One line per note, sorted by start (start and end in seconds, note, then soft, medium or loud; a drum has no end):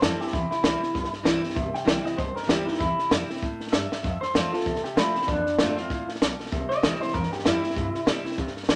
0.00 0.19 F2 medium
0.00 0.30 G2 medium
0.00 0.19 E3 medium
0.00 0.19 G3 medium
0.00 0.20 C4 medium
0.00 0.18 E4 medium
0.00 0.21 A4 medium
0.00 snare loud
0.00 hi-hat pedal medium
0.19 0.33 C4 soft
0.19 0.32 E4 medium
0.19 0.33 G4 medium
0.19 snare soft
0.27 snare soft
0.32 0.51 E2 medium
0.32 0.92 C3 medium
0.32 0.50 E4 loud
0.32 kick loud
0.32 snare soft
0.51 1.11 E4 medium
0.51 muted upright bass stroke medium
0.51 snare soft
0.63 0.81 C2 loud
0.63 0.81 E3 medium
0.63 0.81 G3 medium
0.63 0.81 C4 medium
0.63 0.80 E4 medium
0.63 snare loud
0.63 hi-hat pedal medium
0.81 0.95 C4 soft
0.81 0.94 E4 medium
0.81 snare soft
0.93 1.12 B1 medium
0.93 1.53 G2 medium
0.93 kick loud
0.93 snare soft
1.04 snare soft
1.13 snare soft
1.23 1.43 C2 medium
1.23 1.42 E3 medium
1.23 1.42 G3 medium
1.23 1.42 C4 loud
1.23 1.41 E4 loud
1.23 snare loud
1.23 hi-hat pedal medium
1.42 1.56 C4 medium
1.42 1.55 E4 medium
1.42 snare soft
1.50 snare soft
1.54 1.74 G1 medium
1.54 2.15 C3 loud
1.54 kick loud
1.54 snare soft
1.74 2.04 G5 medium
1.74 snare soft
1.84 2.05 B1 loud
1.84 2.03 E3 medium
1.84 2.04 G3 medium
1.84 2.03 C4 medium
1.84 2.01 E4 medium
1.84 snare loud
1.84 hi-hat pedal medium
2.02 2.17 C4 soft
2.02 2.16 E4 medium
2.02 2.18 D#5 medium
2.02 muted upright bass stroke medium
2.06 snare soft
2.16 2.36 C2 medium
2.16 2.76 G2 medium
2.16 2.35 C5 medium
2.16 kick loud
2.16 snare soft
2.36 2.49 A#4 medium
2.36 snare soft
2.43 2.65 E3 medium
2.43 snare soft
2.47 2.67 D2 medium
2.47 2.66 G3 medium
2.47 2.66 C4 medium
2.47 2.63 E4 loud
2.47 2.67 G4 medium
2.47 snare loud
2.47 hi-hat pedal medium
2.64 2.79 C4 soft
2.64 2.79 D#4 medium
2.64 2.78 E4 medium
2.68 snare soft
2.74 snare soft
2.79 2.98 E2 medium
2.79 3.39 C3 loud
2.79 3.09 E4 loud
2.79 kick loud
2.79 snare soft
2.99 snare soft
3.10 3.29 F2 loud
3.10 3.28 E3 medium
3.10 3.28 G3 medium
3.10 3.29 C4 medium
3.10 3.27 E4 medium
3.10 snare loud
3.10 hi-hat pedal loud
3.28 3.42 C4 soft
3.28 3.41 E4 medium
3.28 muted upright bass stroke medium
3.28 snare soft
3.37 snare soft
3.42 3.72 A2 medium
3.42 kick loud
3.42 snare soft
3.60 muted upright bass stroke soft
3.60 snare soft
3.67 snare soft
3.72 4.02 G2 loud
3.72 3.91 G2 medium
3.72 4.20 E5 loud
3.72 snare loud
3.72 hi-hat pedal medium
3.91 muted upright bass stroke medium
3.91 snare medium
4.03 4.63 F2 medium
4.03 4.22 F2 medium
4.03 kick loud
4.03 snare soft
4.21 4.52 C5 medium
4.21 snare soft
4.34 4.53 E2 loud
4.34 4.52 F3 medium
4.34 4.53 A3 medium
4.34 4.53 C4 medium
4.34 4.51 F4 medium
4.34 snare loud
4.34 hi-hat pedal loud
4.52 4.66 C4 medium
4.52 4.65 F4 medium
4.52 4.83 A4 loud
4.52 muted upright bass stroke medium
4.52 snare soft
4.60 snare soft
4.65 4.83 D2 medium
4.65 5.25 C3 medium
4.65 kick loud
4.65 snare soft
4.76 snare soft
4.84 4.96 G4 medium
4.84 snare soft
4.96 5.14 C2 loud
4.96 5.14 F3 medium
4.96 5.14 A3 medium
4.96 5.15 C4 loud
4.96 5.27 E4 loud
4.96 5.13 F4 loud
4.96 snare loud
4.96 hi-hat pedal medium
5.14 5.28 C4 medium
5.14 5.27 F4 medium
5.14 muted upright bass stroke soft
5.14 snare soft
5.22 snare soft
5.27 5.46 A1 medium
5.27 5.88 F2 loud
5.27 5.75 D4 loud
5.27 kick loud
5.27 snare soft
5.46 muted upright bass stroke medium
5.46 snare soft
5.59 5.77 G1 loud
5.59 5.77 F3 medium
5.59 5.77 A3 medium
5.59 5.78 C4 medium
5.59 5.77 F4 loud
5.59 snare loud
5.59 hi-hat pedal loud
5.77 6.07 F4 loud
5.77 5.90 F4 medium
5.77 muted upright bass stroke medium
5.77 snare soft
5.81 5.91 C4 medium
5.90 6.07 A1 medium
5.90 6.20 A2 medium
5.90 kick loud
5.90 snare soft
6.09 muted upright bass stroke soft
6.09 snare soft
6.15 snare soft
6.21 6.38 B1 loud
6.21 6.51 B2 medium
6.21 snare loud
6.21 hi-hat pedal medium
6.40 snare soft
6.46 snare soft
6.51 6.70 C2 medium
6.51 7.11 C3 loud
6.51 kick loud
6.51 snare soft
6.69 7.00 D#5 loud
6.69 muted upright bass stroke medium
6.69 snare soft
6.82 7.01 D2 loud
6.82 7.00 E3 medium
6.82 7.01 G3 medium
6.82 7.01 C4 medium
6.82 7.00 E4 medium
6.82 snare loud
6.82 hi-hat pedal loud
7.01 7.14 C4 soft
7.01 7.13 E4 medium
7.01 7.14 C5 loud
7.01 muted upright bass stroke medium
7.01 snare soft
7.08 snare soft
7.14 7.31 E2 medium
7.14 7.73 G2 medium
7.14 7.31 A#4 medium
7.14 kick loud
7.14 snare soft
7.23 snare soft
7.32 7.45 G4 medium
7.32 snare soft
7.39 snare soft
7.44 7.62 F2 medium
7.44 7.62 E3 medium
7.44 7.62 G3 loud
7.44 7.63 C4 loud
7.44 8.05 E4 loud
7.44 7.61 E4 loud
7.44 snare loud
7.44 hi-hat pedal medium
7.62 7.76 C4 medium
7.62 7.75 E4 medium
7.62 snare soft
7.70 snare soft
7.75 7.93 G2 medium
7.75 8.35 C3 medium
7.75 kick loud
7.75 snare soft
7.94 muted upright bass stroke medium
7.94 snare soft
8.05 8.24 B2 loud
8.05 8.24 E3 medium
8.05 8.24 G3 medium
8.05 8.24 C4 medium
8.05 8.23 E4 loud
8.05 snare loud
8.05 hi-hat pedal loud
8.24 8.38 C4 medium
8.24 8.37 E4 medium
8.24 muted upright bass stroke medium
8.24 snare soft
8.32 snare soft
8.38 8.76 G2 medium
8.38 8.56 C3 medium
8.38 kick loud
8.38 snare soft
8.47 snare soft
8.56 muted upright bass stroke medium
8.56 snare soft
8.63 snare soft
8.68 8.76 A2 loud
8.68 8.76 E3 medium
8.68 8.76 G3 medium
8.68 8.76 C4 medium
8.68 8.76 E4 medium
8.68 snare loud
8.68 hi-hat pedal medium